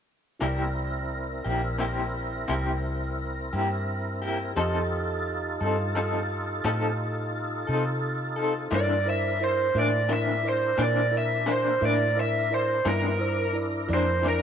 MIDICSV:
0, 0, Header, 1, 6, 480
1, 0, Start_track
1, 0, Tempo, 691244
1, 290, Time_signature, 12, 3, 24, 8
1, 10013, End_track
2, 0, Start_track
2, 0, Title_t, "Lead electric guitar"
2, 0, Program_c, 0, 29
2, 6078, Note_on_c, 0, 74, 77
2, 6299, Note_off_c, 0, 74, 0
2, 6317, Note_on_c, 0, 76, 63
2, 6538, Note_off_c, 0, 76, 0
2, 6553, Note_on_c, 0, 72, 72
2, 6776, Note_off_c, 0, 72, 0
2, 6798, Note_on_c, 0, 74, 75
2, 7018, Note_off_c, 0, 74, 0
2, 7036, Note_on_c, 0, 76, 77
2, 7257, Note_off_c, 0, 76, 0
2, 7282, Note_on_c, 0, 72, 72
2, 7500, Note_off_c, 0, 72, 0
2, 7515, Note_on_c, 0, 74, 65
2, 7736, Note_off_c, 0, 74, 0
2, 7763, Note_on_c, 0, 76, 67
2, 7980, Note_off_c, 0, 76, 0
2, 7996, Note_on_c, 0, 72, 77
2, 8217, Note_off_c, 0, 72, 0
2, 8231, Note_on_c, 0, 74, 60
2, 8454, Note_off_c, 0, 74, 0
2, 8475, Note_on_c, 0, 76, 59
2, 8695, Note_off_c, 0, 76, 0
2, 8709, Note_on_c, 0, 72, 71
2, 8932, Note_off_c, 0, 72, 0
2, 8949, Note_on_c, 0, 70, 83
2, 9404, Note_off_c, 0, 70, 0
2, 9681, Note_on_c, 0, 72, 83
2, 9897, Note_off_c, 0, 72, 0
2, 9920, Note_on_c, 0, 70, 58
2, 10013, Note_off_c, 0, 70, 0
2, 10013, End_track
3, 0, Start_track
3, 0, Title_t, "Tine electric piano"
3, 0, Program_c, 1, 4
3, 274, Note_on_c, 1, 64, 43
3, 284, Note_on_c, 1, 70, 36
3, 298, Note_on_c, 1, 74, 47
3, 3138, Note_off_c, 1, 64, 0
3, 3143, Note_off_c, 1, 70, 0
3, 3150, Note_off_c, 1, 74, 0
3, 3164, Note_on_c, 1, 67, 48
3, 3176, Note_on_c, 1, 69, 41
3, 3189, Note_on_c, 1, 75, 53
3, 6021, Note_off_c, 1, 67, 0
3, 6027, Note_off_c, 1, 69, 0
3, 6034, Note_off_c, 1, 75, 0
3, 6046, Note_on_c, 1, 64, 56
3, 6054, Note_on_c, 1, 70, 55
3, 6060, Note_on_c, 1, 74, 59
3, 6230, Note_off_c, 1, 64, 0
3, 6234, Note_off_c, 1, 70, 0
3, 6237, Note_off_c, 1, 74, 0
3, 6287, Note_on_c, 1, 64, 48
3, 6294, Note_on_c, 1, 70, 46
3, 6299, Note_on_c, 1, 72, 52
3, 6470, Note_off_c, 1, 64, 0
3, 6473, Note_off_c, 1, 70, 0
3, 6476, Note_off_c, 1, 72, 0
3, 6530, Note_on_c, 1, 64, 44
3, 6535, Note_on_c, 1, 70, 39
3, 6540, Note_on_c, 1, 72, 48
3, 6711, Note_off_c, 1, 64, 0
3, 6714, Note_off_c, 1, 70, 0
3, 6717, Note_off_c, 1, 72, 0
3, 6767, Note_on_c, 1, 64, 48
3, 6773, Note_on_c, 1, 70, 42
3, 6784, Note_on_c, 1, 76, 48
3, 6950, Note_off_c, 1, 64, 0
3, 6953, Note_off_c, 1, 70, 0
3, 6958, Note_off_c, 1, 76, 0
3, 7011, Note_on_c, 1, 64, 42
3, 7015, Note_on_c, 1, 70, 40
3, 7020, Note_on_c, 1, 74, 49
3, 7191, Note_off_c, 1, 64, 0
3, 7194, Note_off_c, 1, 70, 0
3, 7196, Note_off_c, 1, 74, 0
3, 7245, Note_on_c, 1, 64, 46
3, 7253, Note_on_c, 1, 70, 40
3, 7257, Note_on_c, 1, 74, 52
3, 7429, Note_off_c, 1, 64, 0
3, 7432, Note_off_c, 1, 70, 0
3, 7434, Note_off_c, 1, 74, 0
3, 7482, Note_on_c, 1, 64, 47
3, 7489, Note_on_c, 1, 70, 45
3, 7494, Note_on_c, 1, 72, 49
3, 7666, Note_off_c, 1, 64, 0
3, 7670, Note_off_c, 1, 70, 0
3, 7673, Note_off_c, 1, 72, 0
3, 7718, Note_on_c, 1, 64, 51
3, 7726, Note_on_c, 1, 70, 44
3, 7733, Note_on_c, 1, 74, 50
3, 7905, Note_off_c, 1, 64, 0
3, 7909, Note_off_c, 1, 70, 0
3, 7912, Note_off_c, 1, 74, 0
3, 7959, Note_on_c, 1, 64, 42
3, 7967, Note_on_c, 1, 70, 42
3, 7974, Note_on_c, 1, 74, 46
3, 8145, Note_off_c, 1, 64, 0
3, 8149, Note_off_c, 1, 70, 0
3, 8153, Note_off_c, 1, 74, 0
3, 8199, Note_on_c, 1, 64, 46
3, 8204, Note_on_c, 1, 70, 43
3, 8212, Note_on_c, 1, 76, 48
3, 8385, Note_off_c, 1, 64, 0
3, 8387, Note_off_c, 1, 70, 0
3, 8391, Note_off_c, 1, 76, 0
3, 8442, Note_on_c, 1, 64, 42
3, 8448, Note_on_c, 1, 70, 40
3, 8455, Note_on_c, 1, 76, 51
3, 8626, Note_off_c, 1, 64, 0
3, 8629, Note_off_c, 1, 70, 0
3, 8632, Note_off_c, 1, 76, 0
3, 8683, Note_on_c, 1, 64, 46
3, 8691, Note_on_c, 1, 70, 45
3, 8697, Note_on_c, 1, 74, 53
3, 8866, Note_off_c, 1, 64, 0
3, 8870, Note_off_c, 1, 70, 0
3, 8873, Note_off_c, 1, 74, 0
3, 8925, Note_on_c, 1, 64, 53
3, 8927, Note_on_c, 1, 70, 50
3, 8934, Note_on_c, 1, 76, 57
3, 9107, Note_off_c, 1, 64, 0
3, 9108, Note_off_c, 1, 70, 0
3, 9112, Note_off_c, 1, 76, 0
3, 9158, Note_on_c, 1, 64, 50
3, 9165, Note_on_c, 1, 70, 43
3, 9171, Note_on_c, 1, 72, 58
3, 9343, Note_off_c, 1, 64, 0
3, 9346, Note_off_c, 1, 70, 0
3, 9350, Note_off_c, 1, 72, 0
3, 9396, Note_on_c, 1, 64, 47
3, 9406, Note_on_c, 1, 70, 40
3, 9410, Note_on_c, 1, 74, 50
3, 9582, Note_off_c, 1, 64, 0
3, 9587, Note_off_c, 1, 70, 0
3, 9589, Note_off_c, 1, 74, 0
3, 9639, Note_on_c, 1, 64, 48
3, 9645, Note_on_c, 1, 70, 43
3, 9653, Note_on_c, 1, 74, 52
3, 9823, Note_off_c, 1, 64, 0
3, 9826, Note_off_c, 1, 70, 0
3, 9830, Note_off_c, 1, 74, 0
3, 9873, Note_on_c, 1, 64, 45
3, 9884, Note_on_c, 1, 70, 40
3, 9888, Note_on_c, 1, 74, 53
3, 10013, Note_off_c, 1, 64, 0
3, 10013, Note_off_c, 1, 70, 0
3, 10013, Note_off_c, 1, 74, 0
3, 10013, End_track
4, 0, Start_track
4, 0, Title_t, "Tonewheel organ"
4, 0, Program_c, 2, 16
4, 292, Note_on_c, 2, 60, 47
4, 292, Note_on_c, 2, 64, 44
4, 292, Note_on_c, 2, 70, 42
4, 3147, Note_off_c, 2, 60, 0
4, 3147, Note_off_c, 2, 64, 0
4, 3147, Note_off_c, 2, 70, 0
4, 3175, Note_on_c, 2, 63, 47
4, 3176, Note_on_c, 2, 69, 53
4, 3178, Note_on_c, 2, 65, 44
4, 6027, Note_off_c, 2, 63, 0
4, 6027, Note_off_c, 2, 69, 0
4, 6028, Note_off_c, 2, 65, 0
4, 6041, Note_on_c, 2, 62, 59
4, 6047, Note_on_c, 2, 64, 55
4, 6048, Note_on_c, 2, 70, 55
4, 8895, Note_off_c, 2, 62, 0
4, 8898, Note_off_c, 2, 64, 0
4, 8899, Note_off_c, 2, 70, 0
4, 8921, Note_on_c, 2, 59, 51
4, 8923, Note_on_c, 2, 65, 54
4, 8927, Note_on_c, 2, 63, 51
4, 9165, Note_off_c, 2, 59, 0
4, 9166, Note_off_c, 2, 65, 0
4, 9168, Note_off_c, 2, 63, 0
4, 9172, Note_on_c, 2, 62, 61
4, 9173, Note_on_c, 2, 64, 62
4, 9173, Note_on_c, 2, 70, 57
4, 10013, Note_off_c, 2, 62, 0
4, 10013, Note_off_c, 2, 64, 0
4, 10013, Note_off_c, 2, 70, 0
4, 10013, End_track
5, 0, Start_track
5, 0, Title_t, "Clean electric guitar"
5, 0, Program_c, 3, 27
5, 283, Note_on_c, 3, 48, 58
5, 285, Note_on_c, 3, 58, 61
5, 288, Note_on_c, 3, 64, 65
5, 289, Note_on_c, 3, 67, 59
5, 431, Note_off_c, 3, 48, 0
5, 432, Note_off_c, 3, 58, 0
5, 434, Note_off_c, 3, 64, 0
5, 434, Note_off_c, 3, 67, 0
5, 1003, Note_on_c, 3, 67, 38
5, 1011, Note_on_c, 3, 64, 37
5, 1015, Note_on_c, 3, 58, 33
5, 1151, Note_off_c, 3, 67, 0
5, 1155, Note_off_c, 3, 64, 0
5, 1157, Note_off_c, 3, 58, 0
5, 1239, Note_on_c, 3, 48, 49
5, 1247, Note_on_c, 3, 58, 51
5, 1250, Note_on_c, 3, 64, 45
5, 1256, Note_on_c, 3, 67, 52
5, 1390, Note_off_c, 3, 48, 0
5, 1394, Note_off_c, 3, 58, 0
5, 1395, Note_off_c, 3, 64, 0
5, 1398, Note_off_c, 3, 67, 0
5, 1723, Note_on_c, 3, 48, 65
5, 1729, Note_on_c, 3, 58, 62
5, 1733, Note_on_c, 3, 64, 64
5, 1734, Note_on_c, 3, 67, 62
5, 1872, Note_off_c, 3, 48, 0
5, 1875, Note_off_c, 3, 58, 0
5, 1877, Note_off_c, 3, 64, 0
5, 1878, Note_off_c, 3, 67, 0
5, 2450, Note_on_c, 3, 67, 40
5, 2458, Note_on_c, 3, 64, 34
5, 2461, Note_on_c, 3, 58, 32
5, 2596, Note_off_c, 3, 67, 0
5, 2600, Note_off_c, 3, 64, 0
5, 2601, Note_off_c, 3, 58, 0
5, 2929, Note_on_c, 3, 67, 39
5, 2933, Note_on_c, 3, 64, 45
5, 2940, Note_on_c, 3, 58, 37
5, 3075, Note_off_c, 3, 67, 0
5, 3078, Note_off_c, 3, 64, 0
5, 3081, Note_off_c, 3, 58, 0
5, 3170, Note_on_c, 3, 53, 55
5, 3170, Note_on_c, 3, 60, 60
5, 3173, Note_on_c, 3, 63, 61
5, 3175, Note_on_c, 3, 69, 71
5, 3316, Note_off_c, 3, 53, 0
5, 3316, Note_off_c, 3, 60, 0
5, 3317, Note_off_c, 3, 63, 0
5, 3319, Note_off_c, 3, 69, 0
5, 3894, Note_on_c, 3, 69, 40
5, 3901, Note_on_c, 3, 63, 41
5, 3905, Note_on_c, 3, 60, 34
5, 4038, Note_off_c, 3, 69, 0
5, 4042, Note_off_c, 3, 63, 0
5, 4044, Note_off_c, 3, 60, 0
5, 4134, Note_on_c, 3, 53, 45
5, 4141, Note_on_c, 3, 60, 49
5, 4142, Note_on_c, 3, 63, 53
5, 4145, Note_on_c, 3, 69, 58
5, 4278, Note_off_c, 3, 53, 0
5, 4281, Note_off_c, 3, 60, 0
5, 4282, Note_off_c, 3, 63, 0
5, 4283, Note_off_c, 3, 69, 0
5, 4614, Note_on_c, 3, 53, 70
5, 4617, Note_on_c, 3, 60, 73
5, 4622, Note_on_c, 3, 69, 79
5, 4624, Note_on_c, 3, 63, 72
5, 4758, Note_off_c, 3, 53, 0
5, 4760, Note_off_c, 3, 60, 0
5, 4762, Note_off_c, 3, 69, 0
5, 4763, Note_off_c, 3, 63, 0
5, 5327, Note_on_c, 3, 69, 37
5, 5336, Note_on_c, 3, 63, 36
5, 5342, Note_on_c, 3, 60, 31
5, 5475, Note_off_c, 3, 69, 0
5, 5479, Note_off_c, 3, 63, 0
5, 5482, Note_off_c, 3, 60, 0
5, 5807, Note_on_c, 3, 69, 48
5, 5816, Note_on_c, 3, 63, 38
5, 5824, Note_on_c, 3, 60, 32
5, 5954, Note_off_c, 3, 69, 0
5, 5959, Note_off_c, 3, 63, 0
5, 5963, Note_off_c, 3, 60, 0
5, 6048, Note_on_c, 3, 48, 63
5, 6053, Note_on_c, 3, 52, 65
5, 6054, Note_on_c, 3, 58, 67
5, 6061, Note_on_c, 3, 62, 74
5, 6195, Note_off_c, 3, 48, 0
5, 6197, Note_off_c, 3, 52, 0
5, 6198, Note_off_c, 3, 58, 0
5, 6201, Note_off_c, 3, 62, 0
5, 6770, Note_on_c, 3, 62, 43
5, 6779, Note_on_c, 3, 58, 38
5, 6783, Note_on_c, 3, 52, 37
5, 6915, Note_off_c, 3, 62, 0
5, 6920, Note_off_c, 3, 58, 0
5, 6922, Note_off_c, 3, 52, 0
5, 7005, Note_on_c, 3, 48, 49
5, 7008, Note_on_c, 3, 52, 55
5, 7014, Note_on_c, 3, 58, 47
5, 7017, Note_on_c, 3, 62, 50
5, 7153, Note_off_c, 3, 48, 0
5, 7154, Note_off_c, 3, 52, 0
5, 7157, Note_off_c, 3, 58, 0
5, 7159, Note_off_c, 3, 62, 0
5, 7484, Note_on_c, 3, 48, 59
5, 7488, Note_on_c, 3, 52, 70
5, 7489, Note_on_c, 3, 58, 66
5, 7491, Note_on_c, 3, 62, 79
5, 7632, Note_off_c, 3, 48, 0
5, 7634, Note_off_c, 3, 52, 0
5, 7634, Note_off_c, 3, 58, 0
5, 7635, Note_off_c, 3, 62, 0
5, 7959, Note_on_c, 3, 48, 45
5, 7963, Note_on_c, 3, 52, 51
5, 7967, Note_on_c, 3, 58, 52
5, 7971, Note_on_c, 3, 62, 54
5, 8109, Note_off_c, 3, 48, 0
5, 8111, Note_off_c, 3, 52, 0
5, 8113, Note_off_c, 3, 58, 0
5, 8115, Note_off_c, 3, 62, 0
5, 8199, Note_on_c, 3, 62, 40
5, 8208, Note_on_c, 3, 58, 36
5, 8216, Note_on_c, 3, 52, 34
5, 8349, Note_off_c, 3, 62, 0
5, 8353, Note_off_c, 3, 58, 0
5, 8357, Note_off_c, 3, 52, 0
5, 8924, Note_on_c, 3, 48, 68
5, 8928, Note_on_c, 3, 52, 60
5, 8931, Note_on_c, 3, 58, 71
5, 8931, Note_on_c, 3, 62, 66
5, 9070, Note_off_c, 3, 48, 0
5, 9072, Note_off_c, 3, 52, 0
5, 9074, Note_off_c, 3, 58, 0
5, 9074, Note_off_c, 3, 62, 0
5, 9642, Note_on_c, 3, 62, 49
5, 9651, Note_on_c, 3, 58, 41
5, 9654, Note_on_c, 3, 52, 31
5, 9789, Note_off_c, 3, 62, 0
5, 9793, Note_off_c, 3, 58, 0
5, 9795, Note_off_c, 3, 52, 0
5, 9882, Note_on_c, 3, 48, 46
5, 9889, Note_on_c, 3, 52, 52
5, 9892, Note_on_c, 3, 58, 49
5, 9897, Note_on_c, 3, 62, 52
5, 10013, Note_off_c, 3, 48, 0
5, 10013, Note_off_c, 3, 52, 0
5, 10013, Note_off_c, 3, 58, 0
5, 10013, Note_off_c, 3, 62, 0
5, 10013, End_track
6, 0, Start_track
6, 0, Title_t, "Fingered electric bass"
6, 0, Program_c, 4, 33
6, 288, Note_on_c, 4, 36, 56
6, 989, Note_off_c, 4, 36, 0
6, 1010, Note_on_c, 4, 34, 67
6, 1710, Note_off_c, 4, 34, 0
6, 1730, Note_on_c, 4, 36, 68
6, 2430, Note_off_c, 4, 36, 0
6, 2453, Note_on_c, 4, 43, 63
6, 3152, Note_off_c, 4, 43, 0
6, 3172, Note_on_c, 4, 41, 63
6, 3871, Note_off_c, 4, 41, 0
6, 3895, Note_on_c, 4, 43, 70
6, 4593, Note_off_c, 4, 43, 0
6, 4614, Note_on_c, 4, 45, 65
6, 5313, Note_off_c, 4, 45, 0
6, 5338, Note_on_c, 4, 48, 61
6, 6034, Note_off_c, 4, 48, 0
6, 6053, Note_on_c, 4, 43, 63
6, 6751, Note_off_c, 4, 43, 0
6, 6769, Note_on_c, 4, 45, 80
6, 7468, Note_off_c, 4, 45, 0
6, 7487, Note_on_c, 4, 46, 72
6, 8187, Note_off_c, 4, 46, 0
6, 8207, Note_on_c, 4, 45, 74
6, 8906, Note_off_c, 4, 45, 0
6, 8926, Note_on_c, 4, 43, 66
6, 9625, Note_off_c, 4, 43, 0
6, 9647, Note_on_c, 4, 41, 78
6, 10013, Note_off_c, 4, 41, 0
6, 10013, End_track
0, 0, End_of_file